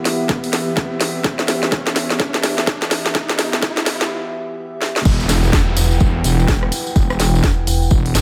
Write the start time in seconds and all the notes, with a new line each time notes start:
Already playing: E3 B3 E4 G4 B4 E5 F#5, riser
0.05 snare, open hi-hat
0.29 kick, snare
0.44 open hi-hat
0.53 snare, open hi-hat
0.77 kick, snare
1.01 snare, open hi-hat
1.24 kick, snare
1.39 snare
1.48 snare, open hi-hat
1.63 snare
1.72 kick, snare
1.87 snare
1.96 snare, open hi-hat
2.10 snare
2.20 kick, snare
2.34 snare
2.44 snare, open hi-hat
2.58 snare
2.67 kick, snare
2.82 snare
2.91 snare, open hi-hat
3.06 snare
3.15 kick, snare
3.29 snare
3.39 snare, open hi-hat
3.53 snare
3.62 kick, snare
3.77 snare
3.86 snare, open hi-hat
4.01 snare
4.82 snare
4.96 snare
5.05 E1 E4 B4 F#5 G5, kick, tambourine, crash, downlifter
5.20 tambourine
5.29 snare, open hi-hat, tambourine
5.44 tambourine
5.53 E1, kick, snare, tambourine
5.76 E1, open hi-hat, tambourine
5.91 tambourine
6.00 E1, kick, tambourine
6.24 E1, open hi-hat, tambourine
6.40 tambourine
6.48 kick, snare, tambourine
6.63 cross-stick
6.72 open hi-hat, tambourine
6.87 tambourine
6.96 E1, kick, tambourine
7.10 cross-stick, tambourine
7.20 snare, open hi-hat, tambourine
7.35 tambourine
7.43 E1, kick, snare, tambourine
7.67 E1, open hi-hat, tambourine
7.82 tambourine
7.91 E1, kick, tambourine
8.06 open hi-hat
8.15 G1, snare, open hi-hat, tambourine